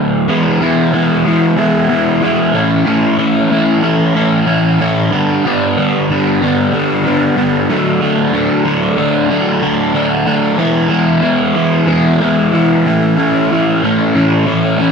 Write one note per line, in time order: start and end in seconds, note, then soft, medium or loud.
0.00 0.26 D3 medium
0.00 0.27 F#3 medium
0.00 0.27 A3 medium
0.00 0.28 D4 medium
0.28 0.60 E3 medium
0.28 0.60 G#3 loud
0.28 0.61 B3 loud
0.28 0.62 E4 medium
0.61 0.92 E3 medium
0.61 0.92 G#3 medium
0.61 0.94 B3 medium
0.61 0.94 E4 medium
0.93 1.24 E3 medium
0.93 1.25 G#3 medium
0.93 1.26 B3 medium
0.93 1.26 E4 medium
1.25 1.55 E3 medium
1.25 1.57 G#3 medium
1.25 1.57 B3 medium
1.25 1.58 E4 medium
1.57 1.87 E3 loud
1.57 1.88 G#3 loud
1.57 1.89 B3 loud
1.57 1.89 E4 loud
1.88 2.20 E3 medium
1.88 2.21 G#3 medium
1.88 2.22 B3 medium
1.88 2.23 E4 medium
2.21 2.52 E3 medium
2.21 2.52 G#3 medium
2.21 2.55 B3 medium
2.21 2.53 E4 loud
2.53 2.83 A2 medium
2.53 2.84 E3 medium
2.53 2.85 A3 medium
2.53 2.85 C#4 medium
2.53 2.86 E4 loud
2.85 3.16 A2 medium
2.85 3.17 E3 medium
2.85 3.17 A3 loud
2.85 3.18 C#4 medium
2.85 3.19 E4 loud
3.18 3.50 A2 medium
3.18 3.50 E3 medium
3.18 3.51 A3 medium
3.18 3.51 C#4 medium
3.18 3.52 E4 medium
3.51 3.80 A2 medium
3.51 3.82 E3 medium
3.51 3.82 A3 medium
3.51 3.82 C#4 medium
3.51 3.83 E4 medium
3.82 4.13 A2 medium
3.82 4.14 E3 medium
3.82 4.14 A3 medium
3.82 4.15 C#4 medium
3.82 4.15 E4 medium
4.14 4.44 A2 medium
4.14 4.45 E3 loud
4.14 4.46 A3 loud
4.14 4.46 C#4 loud
4.14 4.46 E4 loud
4.46 4.78 A2 medium
4.46 4.78 E3 medium
4.46 4.80 A3 medium
4.46 4.80 C#4 medium
4.46 4.80 E4 medium
4.79 5.09 A2 medium
4.79 5.09 E3 medium
4.79 5.10 A3 medium
4.79 5.10 C#4 medium
4.79 5.10 E4 medium
5.11 5.44 G2 medium
5.11 5.44 D3 loud
5.11 5.45 G3 medium
5.11 5.45 B3 medium
5.11 5.46 D4 loud
5.45 5.76 G2 medium
5.45 5.76 D3 loud
5.45 5.77 G3 loud
5.45 5.78 B3 loud
5.45 5.79 D4 loud
5.77 6.08 G2 medium
5.77 6.09 D3 medium
5.77 6.10 G3 medium
5.77 6.10 B3 medium
5.77 6.11 D4 medium
6.09 6.40 G2 medium
6.09 6.40 D3 medium
6.09 6.41 G3 medium
6.09 6.42 B3 medium
6.09 6.43 D4 loud
6.41 6.71 G2 medium
6.41 6.72 D3 medium
6.41 6.72 G3 medium
6.41 6.72 B3 medium
6.41 6.73 D4 medium
6.72 7.03 G2 medium
6.72 7.04 D3 loud
6.72 7.05 G3 loud
6.72 7.05 B3 loud
6.72 7.05 D4 loud
7.04 7.35 G2 medium
7.04 7.36 D3 medium
7.04 7.36 G3 medium
7.04 7.37 B3 medium
7.04 7.37 D4 medium
7.36 7.66 G2 medium
7.36 7.67 D3 medium
7.36 7.67 G3 medium
7.36 7.67 B3 medium
7.36 7.68 D4 medium
7.69 8.00 D3 medium
7.69 8.01 F#3 medium
7.69 8.01 A3 medium
7.69 8.02 D4 medium
8.01 8.31 D3 loud
8.01 8.32 F#3 loud
8.01 8.33 A3 medium
8.01 8.33 D4 loud
8.32 8.63 D3 medium
8.32 8.64 F#3 medium
8.32 8.64 A3 medium
8.32 8.65 D4 medium
8.64 8.96 D3 medium
8.64 8.97 F#3 medium
8.64 8.97 A3 loud
8.64 8.97 D4 loud
8.97 9.28 D3 medium
8.97 9.29 F#3 medium
8.97 9.30 A3 medium
8.97 9.29 D4 medium
9.30 9.61 D3 loud
9.30 9.61 F#3 loud
9.30 9.61 A3 medium
9.30 9.62 D4 loud
9.62 9.93 D3 medium
9.62 9.93 F#3 medium
9.62 9.94 A3 medium
9.62 9.95 D4 medium
9.94 10.25 D3 medium
9.94 10.25 F#3 medium
9.94 10.26 A3 medium
9.94 10.26 D4 medium
10.26 10.57 D3 medium
10.26 10.57 F#3 medium
10.26 10.58 A3 medium
10.26 10.58 D4 medium
10.58 10.88 E3 medium
10.58 10.88 G#3 medium
10.58 10.90 B3 loud
10.58 10.90 E4 loud
10.89 11.21 E3 medium
10.89 11.21 G#3 medium
10.89 11.23 B3 medium
10.89 11.23 E4 medium
11.21 11.53 E3 medium
11.21 11.54 G#3 medium
11.21 11.55 B3 medium
11.21 11.55 E4 medium
11.54 11.85 E3 medium
11.54 11.86 G#3 medium
11.54 11.87 B3 medium
11.54 11.88 E4 medium
11.87 12.19 E3 loud
11.87 12.19 G#3 loud
11.87 12.21 B3 loud
11.87 12.20 E4 loud
12.20 12.52 E3 medium
12.20 12.52 G#3 medium
12.20 12.53 B3 medium
12.20 12.53 E4 medium
12.53 12.84 E3 medium
12.53 12.84 G#3 medium
12.53 12.86 B3 medium
12.53 12.85 E4 loud
12.85 13.16 A2 medium
12.85 13.16 E3 medium
12.85 13.17 A3 medium
12.85 13.17 C#4 medium
12.85 13.18 E4 medium
13.17 13.49 A2 loud
13.17 13.50 E3 loud
13.17 13.51 A3 loud
13.17 13.51 C#4 loud
13.17 13.52 E4 loud
13.51 13.81 A2 medium
13.51 13.82 E3 medium
13.51 13.83 A3 medium
13.51 13.83 C#4 medium
13.51 13.83 E4 loud
13.82 14.13 A2 medium
13.82 14.14 E3 medium
13.82 14.14 A3 loud
13.82 14.14 C#4 medium
13.82 14.15 E4 medium
14.14 14.45 A2 medium
14.14 14.45 E3 medium
14.14 14.46 A3 medium
14.14 14.46 C#4 medium
14.14 14.47 E4 medium
14.46 14.78 A2 loud
14.46 14.78 E3 medium
14.46 14.79 A3 loud
14.46 14.79 C#4 loud
14.46 14.80 E4 loud
14.79 14.92 A2 medium
14.79 14.92 E3 medium
14.79 14.92 A3 medium
14.79 14.92 C#4 medium
14.79 14.92 E4 medium